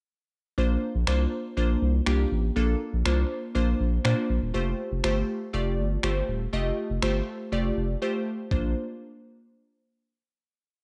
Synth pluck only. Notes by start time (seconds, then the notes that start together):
0.58 A#3 D4 F4 C5
1.07 A#3 D4 F4 C5
1.57 A#3 D4 F4 C5
2.06 A#3 D4 F4 G4
2.56 A#3 D4 F4 A4
3.05 A#3 D4 F4 C5
3.55 A#3 D4 F4 C5
4.04 A#3 D4 F4 C5
4.54 A3 F4 G4 C5
5.04 A3 F4 G4 C5
5.53 A3 F4 G4 D5
6.03 A3 F4 G4 C5
6.53 A3 F4 G4 D#5
7.02 A3 F4 G4 C5
7.52 A3 F4 G4 D5
8.02 A3 F4 G4 C5
8.51 A#3 D4 F4 C5